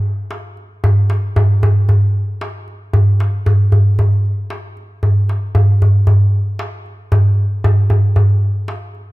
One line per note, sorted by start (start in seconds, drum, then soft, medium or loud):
0.31 darbuka tek medium
0.57 darbuka ka soft
0.84 darbuka dum medium
1.10 darbuka tek medium
1.36 darbuka dum medium
1.50 darbuka ka soft
1.63 darbuka dum medium
1.89 darbuka dum medium
2.02 darbuka ka soft
2.41 darbuka tek medium
2.68 darbuka ka soft
2.93 darbuka dum medium
3.20 darbuka tek medium
3.46 darbuka dum medium
3.72 darbuka dum medium
3.99 darbuka dum medium
4.13 darbuka ka soft
4.25 darbuka ka soft
4.50 darbuka tek medium
4.77 darbuka ka soft
5.03 darbuka dum medium
5.29 darbuka tek soft
5.55 darbuka dum medium
5.69 darbuka ka soft
5.82 darbuka dum medium
6.07 darbuka dum medium
6.21 darbuka ka soft
6.59 darbuka tek medium
6.86 darbuka ka soft
7.12 darbuka dum medium
7.64 darbuka dum medium
7.78 darbuka ka soft
7.90 darbuka dum medium
8.16 darbuka dum medium
8.30 darbuka ka soft
8.68 darbuka tek medium
8.95 darbuka ka soft